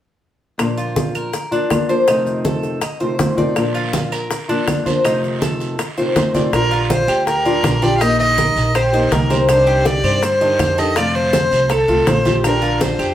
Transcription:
0.58 nylon-string guitar A#2 F3 A#3 D4 F4, high bongo, high conga, claves, maracas
0.77 cuban tres F4, high conga, maracas
0.96 high bongo, high conga, maracas
1.15 cuban tres A#4, claves, maracas
1.33 muted nylon-string guitar stroke, high bongo, high conga, maracas
1.51 nylon-string guitar F3 A#3 D4 F4, cuban tres D4, high conga, maracas
1.70 nylon-string guitar F3 A#3 D4 F4, high bongo, low bongo, high conga, claves, maracas
1.89 nylon-string guitar F3 A#3 D4 F4, cuban tres C5, maracas
2.07 nylon-string guitar F2 C3 D#3 A3 C4 F4, cuban tres D#4, high bongo, high conga, claves, maracas
2.26 high conga, maracas
2.45 cuban tres A4, high bongo, high conga, maracas
2.63 high bongo, maracas
2.81 cuban tres D#5, muted nylon-string guitar stroke, high bongo, high conga, claves, maracas
3.00 nylon-string guitar C3 D#3 A3 C4 F4, cuban tres C5, high bongo, high conga, maracas
3.18 nylon-string guitar D#3 A3 C4 F4, high bongo, low bongo, high conga, maracas
3.37 nylon-string guitar C3 D#3 A3 C4 F4, cuban tres D5, high bongo, high conga, maracas
3.55 nylon-string guitar A#2 F3 A#3 D4 F4, high bongo, high conga, long guiro, claves, maracas
3.75 cuban tres F4, high conga, maracas
3.93 high bongo, high conga, short guiro, maracas
4.12 cuban tres A#4, short guiro, claves, maracas
4.30 muted nylon-string guitar stroke, high bongo, high conga, long guiro, maracas
4.48 nylon-string guitar F3 A#3 D4 F4, cuban tres D4, high conga, maracas
4.67 nylon-string guitar F3 A#3 D4 F4, high bongo, low bongo, high conga, short guiro, claves, maracas
4.85 nylon-string guitar F3 A#3 D4 F4, cuban tres C5, high conga, short guiro, maracas
5.04 nylon-string guitar F2 C3 D#3 A3 C4 F4, cuban tres D#4, high bongo, high conga, long guiro, claves, maracas
5.23 high conga, maracas
5.41 cuban tres A4, high bongo, high conga, short guiro, maracas
5.60 high bongo, short guiro, maracas
5.79 cuban tres D#5, muted nylon-string guitar stroke, high bongo, high conga, long guiro, claves, maracas
5.97 nylon-string guitar C3 D#3 A3 C4 F4, cuban tres C5, high bongo, high conga, maracas
6.16 nylon-string guitar D#3 A3 C4 F4, high bongo, low bongo, high conga, short guiro, maracas
6.34 nylon-string guitar C3 D#3 A3 C4 F4, cuban tres D5, high bongo, high conga, short guiro, maracas
6.52 upright bass A#1, nylon-string guitar D3 G3 D4 F4, fiddle A#4, high bongo, long guiro, claves, maracas
6.71 cuban tres F4, high conga, maracas
6.90 fiddle C5, high bongo, high conga, short guiro, maracas
7.08 upright bass D2, cuban tres G4, short guiro, claves, maracas
7.27 fiddle A#4, muted nylon-string guitar stroke, high bongo, high conga, long guiro, maracas
7.45 nylon-string guitar G3 D4 F4, cuban tres D5, high conga, maracas
7.63 upright bass A#1, nylon-string guitar D3 G3 D4 F4, high bongo, low bongo, high conga, short guiro, claves, maracas
7.82 nylon-string guitar G3 D4 F4, cuban tres G4, fiddle D5, high conga, short guiro, maracas
7.97 nylon-string guitar D#3, cuban tres D#4, fiddle D#5 F5
8.01 nylon-string guitar A#3 D#4 G4, high bongo, long guiro, claves, maracas
8.19 fiddle D#5, high conga, maracas
8.38 cuban tres A#4, high bongo, high conga, short guiro, maracas
8.56 upright bass A#1, high bongo, short guiro, maracas
8.75 cuban tres G4, fiddle C5, muted nylon-string guitar stroke, high bongo, high conga, long guiro, claves, maracas
8.93 nylon-string guitar A#3 D#4 G4, cuban tres D#5, high bongo, high conga, maracas
9.11 upright bass C2, nylon-string guitar D#3 A#3 D#4 G4, fiddle A#4, high bongo, low bongo, high conga, short guiro, maracas
9.30 nylon-string guitar A#3 D#4 G4, cuban tres C5, high bongo, high conga, short guiro, maracas
9.47 nylon-string guitar C3 D#3 G3 D4 G4, fiddle C5, high bongo, high conga, long guiro, claves, maracas
9.67 cuban tres G4, high conga, maracas
9.85 fiddle D5, high bongo, high conga, short guiro, maracas
10.03 upright bass G2, cuban tres C5, short guiro, claves, maracas
10.23 fiddle C5, muted nylon-string guitar stroke, high bongo, high conga, long guiro, maracas
10.41 nylon-string guitar D#3 G3 D4 G4, cuban tres D#5, high conga, maracas
10.59 upright bass F2, nylon-string guitar D#3 G3 D4 G4, high bongo, low bongo, high conga, short guiro, claves, maracas
10.78 nylon-string guitar D#3 G3 D4 G4, cuban tres A4, fiddle D#5, short guiro, maracas
10.96 nylon-string guitar C3 F3 A3 C4 F4, cuban tres F4, fiddle D5, high bongo, high conga, long guiro, claves, maracas
11.15 fiddle C5, high conga, maracas
11.33 cuban tres C5, high bongo, high conga, short guiro, maracas
11.51 upright bass C2, high bongo, short guiro, maracas
11.70 cuban tres A4, fiddle A4, muted nylon-string guitar stroke, high bongo, high conga, long guiro, claves, maracas
11.88 upright bass C2, nylon-string guitar F3 A3 C4 F4, cuban tres F5, high bongo, high conga, maracas
12.07 upright bass A#1, nylon-string guitar F3 A3 C4 F4, fiddle C5, high bongo, low bongo, high conga, short guiro, maracas
12.25 nylon-string guitar F3 A3 C4 F4, cuban tres G4, high bongo, high conga, short guiro, maracas
12.43 nylon-string guitar D3 G3 D4 F4, fiddle A#4, high bongo, high conga, long guiro, claves, maracas
12.62 cuban tres F4, high conga, maracas
12.81 fiddle C5, high bongo, high conga, short guiro, maracas
12.99 upright bass F2, cuban tres G4, short guiro, claves, maracas

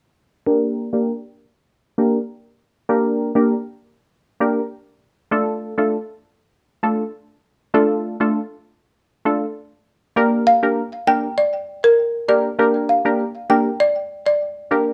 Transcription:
0.46 synth stab A#3 D4 G4 A#4
0.93 synth stab A#3 D4 G4 A#4
1.98 synth stab A#3 D4 G4 A#4
2.89 synth stab A#3 D4 G4 A#4
3.35 synth stab A#3 D4 G4 A#4
4.40 synth stab A#3 D4 G4 A#4
5.31 synth stab A3 D4 F4 A4
5.78 synth stab A3 D4 F4 A4
6.83 synth stab A3 D4 F4 A4
7.74 synth stab A3 D4 F4 A4
8.20 synth stab A3 D4 F4 A4
9.25 synth stab A3 D4 F4 A4
10.16 synth stab A#3 D4 G4 A#4
10.47 marimba F5
10.63 synth stab A#3 D4 G4 A#4
11.07 synth stab A#3 D4 G4 A#4, marimba G5
11.38 marimba D5
11.84 marimba A#4
12.28 synth stab A#3 D4 G4 A#4, marimba D5
12.59 synth stab A#3 D4 G4 A#4
12.89 marimba F5
13.05 synth stab A#3 D4 G4 A#4
13.50 synth stab A#3 D4 G4 A#4, marimba G5
13.80 marimba D5
14.26 marimba D5
14.71 synth stab A#3 D4 G4 A#4

